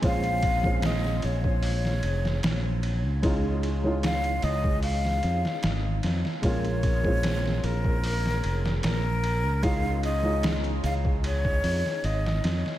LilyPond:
<<
  \new Staff \with { instrumentName = "Flute" } { \time 4/4 \key bes \minor \tempo 4 = 75 f''4 ees''8 des''2 r8 | r4 f''8 ees''8 f''4. r8 | des''4. bes'4. bes'4 | f''8 ees''8 r8 f''8 des''4 ees''8. r16 | }
  \new Staff \with { instrumentName = "Upright piano" } { \time 4/4 \key bes \minor <aes c' des' f'>8. <aes c' des' f'>16 r2. | <aes des' ees' f'>8. <aes des' ees' f'>16 r2. | <aes bes des' f'>8. <aes c' des' f'>16 r2. | <aes des' ees' f'>8. <aes des' ees' f'>16 r2. | }
  \new Staff \with { instrumentName = "Fingered electric bass" } { \clef bass \time 4/4 \key bes \minor bes,,4. bes,,4 f,,8 bes,,8. des,16~ | des,4. des,4 f,16 r16 aes,,8 f,16 r16 | bes,,4. bes,,4 f,,8 bes,,8. des,16~ | des,4. des,4 f,16 r16 aes,,8 f,16 r16 | }
  \new DrumStaff \with { instrumentName = "Drums" } \drummode { \time 4/4 <bd cymr>16 cymr16 <bd cymr>16 bd16 <cymr sn>16 sn16 cymr16 bd16 hho16 sn16 cymr16 sn16 <cymr sn>8 cymr8 | <bd cymr>8 cymr8 <cymr sn>16 cymr16 cymr16 bd16 hho16 sn16 cymr16 sn16 <cymr sn>8 <cymr sn>16 sn16 | <bd cymr>16 cymr16 <bd cymr>16 bd16 <cymr sn>16 sn16 cymr16 bd16 hho16 sn16 cymr16 sn16 <cymr sn>8 cymr8 | <bd cymr>8 cymr8 <cymr sn>16 cymr16 cymr16 bd16 cymr16 bd16 hho16 sn16 cymr16 sn16 <cymr sn>16 sn16 | }
>>